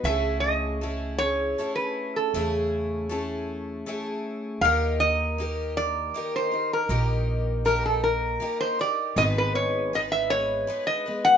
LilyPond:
<<
  \new Staff \with { instrumentName = "Resonator guitar played with a steel bar" } { \time 3/4 \key a \lydian \tempo 4 = 79 e''8 dis''4 cis''8. b'8 a'16~ | a'16 r2 r8. | eis''8 dis''4 d''8. c''8 ais'16~ | ais'16 r8. ais'16 a'16 ais'8. c''16 d''8 |
dis''16 b'16 cis''8 dis''16 e''16 cis''8. dis''8 fis''16 | }
  \new Staff \with { instrumentName = "Twelve-string acoustic guitar" } { \time 3/4 \key a \lydian <cis a cis' e' gis'>4 <a cis' e' gis'>8 <cis' e' gis'>8 <a cis' e' gis'>4 | <cis a cis' e' gis'>4 <a cis' e' gis'>4 <a cis' e' gis'>4 | <dis ais dis' g' ais'>4 <ais dis' g' ais'>4 <ais dis' g' ais'>8 <dis' g' ais'>8 | <dis ais dis' g' ais'>4 <ais dis' g' ais'>4 <ais dis' g' ais'>8 <dis' g' ais'>8 |
<gis, dis gis b dis' b'>4 <gis b dis' b'>8 <gis b dis' b'>8 <gis b dis' b'>8 <gis b dis' b'>8 | }
  \new Staff \with { instrumentName = "Upright bass" } { \clef bass \time 3/4 \key a \lydian cis,2 r4 | e,2 r4 | dis,2 r4 | ais,,2 r4 |
gis,,2 r4 | }
>>